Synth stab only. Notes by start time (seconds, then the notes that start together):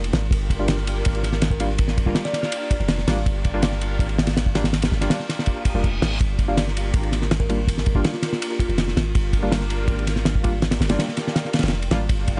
0.59 G3 A#3 D4 F4
1.60 G3 A#3 D4 F4
2.06 G3 A#3 D4 F4
3.08 G3 A#3 D4 F4
3.54 G3 A#3 D4 F4
4.55 G3 A#3 D4 F4
5.01 G3 A#3 D4 F4
5.75 G3 A#3 D4 F4
6.48 G3 A#3 D4 F4
7.49 G3 A#3 D4 F4
7.95 G3 A#3 D4 F4
9.43 G3 A#3 D4 F4
10.44 G3 A#3 D4 F4
10.90 G3 A#3 D4 F4
11.91 G3 A#3 D4 F4